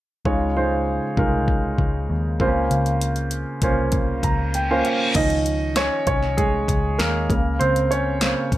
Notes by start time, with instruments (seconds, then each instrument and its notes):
0.25 picked electric bass C#2, grand piano C#3 G#3 D#4 F4 C#5, kick
0.57 grand piano G#3 D#4 F4 C5
1.17 picked electric bass C2, grand piano G#3 D#4 F4 A#4, kick
1.48 kick
1.78 picked electric bass C#2, kick
2.10 picked electric bass D#2
2.40 picked electric bass C#2, grand piano C#3 A#3 C4 F4 C5, kick
2.47 grand piano C#4
2.71 picked electric bass C#2, closed hi-hat
2.86 closed hi-hat
3.01 closed hi-hat
3.16 closed hi-hat
3.31 closed hi-hat
3.62 picked electric bass C2, grand piano A#3 C#4 F4 C5, kick, closed hi-hat
3.92 kick, closed hi-hat, reverse cymbal
4.23 picked electric bass C#2, grand piano A#5, kick, closed hi-hat
4.54 grand piano G5, closed hi-hat
4.71 grand piano A#3 C#4 F4 C5
4.85 grand piano F5, closed hi-hat
5.15 picked electric bass C#2, grand piano D#3 F3 C#4 D#4 D#5, kick, closed hi-hat, crash
5.30 closed hi-hat
5.46 closed hi-hat
5.76 grand piano C#4 C#5, snare, closed hi-hat
6.07 picked electric bass C2, grand piano C#4 C#5, kick, closed hi-hat
6.23 snare
6.37 grand piano G#3 G#4, kick, closed hi-hat
6.68 picked electric bass C#2, kick, closed hi-hat
6.98 picked electric bass D#2, grand piano A#3 A#4, snare, closed hi-hat
7.29 picked electric bass C#2, grand piano C#3 A#3, kick, closed hi-hat
7.59 picked electric bass C#2, grand piano C4 C5, closed hi-hat
7.76 closed hi-hat
7.91 grand piano C#4 C#5, closed hi-hat
8.21 grand piano C#3 A#3 C5, snare, closed hi-hat
8.52 picked electric bass C2, kick, closed hi-hat